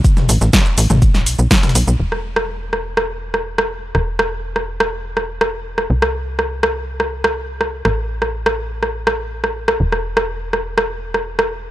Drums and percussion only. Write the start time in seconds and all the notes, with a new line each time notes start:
0.04 kick, closed hi-hat, shaker
0.17 snare, mid tom, shaker
0.29 closed hi-hat, open hi-hat, shaker
0.41 snare, shaker
0.53 kick, snare, closed hi-hat, shaker
0.66 snare, shaker
0.78 closed hi-hat, open hi-hat, shaker
0.90 snare, mid tom, shaker
1.02 kick, closed hi-hat, shaker
1.14 snare, shaker
1.26 closed hi-hat, open hi-hat, shaker
1.39 shaker
1.51 kick, snare, closed hi-hat, shaker
1.57 snare, closed hi-hat
1.63 snare, closed hi-hat, mid tom, shaker
1.69 snare, closed hi-hat
1.75 closed hi-hat, open hi-hat, shaker
1.88 shaker
2.12 cross-stick
2.36 cross-stick
2.73 cross-stick
2.97 cross-stick
3.34 cross-stick
3.58 cross-stick
3.95 cross-stick
4.19 cross-stick
4.56 cross-stick
4.80 cross-stick
5.17 cross-stick
5.41 cross-stick
5.78 cross-stick
6.02 cross-stick
6.39 cross-stick
6.63 cross-stick
7.00 cross-stick
7.24 cross-stick
7.61 cross-stick
7.85 cross-stick
8.22 cross-stick
8.46 cross-stick
8.83 cross-stick
9.07 cross-stick
9.44 cross-stick
9.68 cross-stick
9.92 cross-stick
10.17 cross-stick
10.53 cross-stick
10.78 cross-stick
11.14 cross-stick
11.39 cross-stick